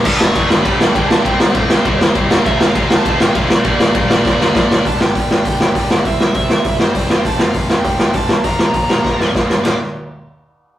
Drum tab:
CC |x-------|--------|--------|--------|
RD |--x-x-x-|x-x-x-x-|x-x-x-x-|x-x-----|
HH |--------|--------|--------|--------|
SD |-o-o-o-o|-o-o-o-o|-o-o-o-o|-o-ooooo|
BD |o-o-o-o-|o-o-o-o-|o-o-o-o-|o-o-o-o-|

CC |--------|--------|--------|--------|
RD |--------|--------|--------|--------|
HH |o-o-o-o-|o-o-o-o-|o-o-o-o-|o-o-----|
SD |-o-o-o-o|-o-o-o-o|-o-o-o-o|-o-ooooo|
BD |o-o-o-o-|o-o-o-o-|o-o-o-o-|o-o-o-o-|

CC |x-------|
RD |--------|
HH |--------|
SD |o-------|
BD |--------|